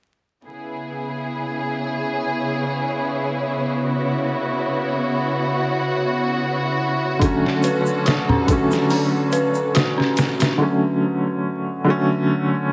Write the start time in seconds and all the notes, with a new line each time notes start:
0.46 C#3 B3 E4 G#4 C#5
3.84 F#4
7.19 D3 F#3 A3 C#4 A4, kick, closed hi-hat, shaker
7.25 C#4
7.46 snare
7.63 B4, closed hi-hat, shaker
7.86 shaker
8.05 F#4, snare, closed hi-hat, shaker
8.29 C#4, low conga
8.47 D3 F#3 A3, kick, closed hi-hat, shaker
8.52 C#4
8.71 C#4, snare, shaker
8.90 C#4, open hi-hat, shaker
9.33 B4, closed hi-hat, shaker
9.54 shaker
9.75 F#4, snare, closed hi-hat, shaker
9.98 C#4, snare
10.17 snare, closed hi-hat, shaker
10.40 C#4, snare, closed hi-hat, shaker
10.58 D3 F#3 A3
10.63 C#4
11.84 D3 F#3
11.88 A3 C#4